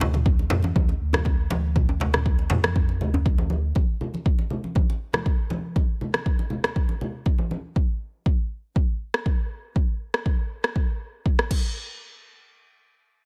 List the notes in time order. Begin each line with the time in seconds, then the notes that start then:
Already playing: D2
0.00 djembe slap, djembe tone, low conga
0.13 mid tom, muted conga, high conga
0.25 kick, djembe tone
0.39 muted conga
0.50 F2, mid tom, djembe slap, djembe bass, low conga
0.63 muted conga, djembe tone, high conga
0.76 D2, kick, high conga
0.88 muted conga, djembe tone
1.01 D2
1.13 cross-stick, high conga, djembe bass, low conga
1.25 kick, muted conga, djembe tone
1.50 D2, muted conga, djembe slap, djembe tone, high conga, low conga
1.76 kick, mid tom, muted conga, high conga
1.89 djembe tone
2.00 djembe slap, low conga
2.13 cross-stick, mid tom, muted conga, djembe tone
2.26 kick
2.39 muted conga
2.50 F2, mid tom, djembe slap, djembe tone, djembe bass, low conga
2.64 cross-stick, muted conga, high conga
2.76 kick, djembe tone
2.89 muted conga
3.01 D2, low conga
3.14 djembe tone, djembe bass
3.26 kick, muted conga
3.38 high conga, djembe tone
3.50 muted conga, high conga
3.75 kick, muted conga, high conga
4.01 low conga
4.14 muted conga, high conga
4.26 kick
4.39 muted conga
4.50 low conga
4.64 muted conga, high conga
4.75 kick, high conga
4.90 muted conga
5.13 cross-stick, high conga, low conga
5.26 kick, muted conga
5.50 muted conga, high conga, low conga
5.76 kick, muted conga, high conga
6.01 low conga
6.14 cross-stick, muted conga
6.26 kick
6.39 muted conga
6.50 low conga
6.64 cross-stick, muted conga, high conga
6.76 kick
6.89 muted conga
7.01 low conga
7.26 kick, muted conga
7.38 high conga
7.51 muted conga, high conga
7.76 kick
8.26 kick
8.76 kick
9.14 cross-stick
9.26 kick
9.76 kick
10.14 cross-stick
10.26 kick
10.64 cross-stick
10.76 kick
11.26 kick
11.39 cross-stick
11.51 kick, crash